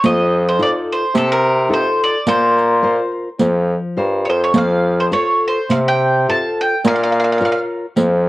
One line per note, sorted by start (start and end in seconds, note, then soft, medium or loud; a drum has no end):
0.04 0.77 F2 loud
0.04 0.58 F3 medium
0.04 0.45 D#5 loud
0.04 riq medium
0.49 0.59 C5 medium
0.59 1.03 D#4 soft
0.59 1.04 F4 medium
0.59 1.04 A4 medium
0.59 0.70 D5 medium
0.59 riq soft
0.92 1.14 C5 medium
1.14 1.69 C3 soft
1.14 1.87 C3 loud
1.14 1.30 A4 medium
1.14 riq medium
1.32 1.69 A#4 loud
1.69 2.14 D#4 soft
1.69 2.15 F4 soft
1.69 2.15 A4 soft
1.73 2.01 C5 medium
2.03 2.26 D5 medium
2.27 3.00 A#2 loud
2.27 2.81 A#3 medium
2.27 3.11 C5 medium
2.27 riq medium
2.58 riq soft
2.82 3.28 F4 soft
2.82 3.28 A#4 soft
2.82 3.29 C5 soft
3.39 3.77 F2 medium
3.39 3.96 F3 soft
3.39 riq medium
3.97 4.26 G2 medium
3.97 4.43 F4 soft
3.97 4.43 A#4 soft
3.97 4.43 C5 medium
4.25 4.52 F2 medium
4.25 4.29 C#5 medium
4.30 4.41 C5 medium
4.44 4.55 C#5 medium
4.54 5.14 F2 loud
4.54 5.11 F3 medium
4.54 5.02 F5 medium
4.54 riq medium
5.00 5.05 C5 medium
5.11 5.58 F4 medium
5.11 5.59 A4 soft
5.11 5.59 C5 medium
5.11 5.45 C#5 medium
5.11 riq soft
5.48 5.70 C5 medium
5.69 6.25 C3 medium
5.69 6.44 C3 medium
5.69 5.76 F5 medium
5.69 riq soft
5.88 6.26 G5 medium
6.28 6.74 F4 soft
6.28 6.74 A4 soft
6.28 6.74 C5 soft
6.28 6.57 A5 medium
6.61 6.84 G5 medium
6.84 7.57 A#2 loud
6.84 7.38 A#3 medium
6.84 6.94 F5 medium
6.84 riq medium
6.96 7.02 F5 medium
7.03 7.10 F5 medium
7.12 7.18 F5 medium
7.20 7.23 F5 medium
7.24 7.30 F5 medium
7.32 7.37 F5 medium
7.38 7.85 F4 soft
7.38 7.85 A#4 soft
7.38 7.86 C#5 medium
7.38 7.44 F5 soft
7.38 riq soft
7.45 7.51 F5 medium
7.52 7.59 F5 medium
7.96 8.29 F2 loud
7.96 8.29 F3 medium
7.96 riq medium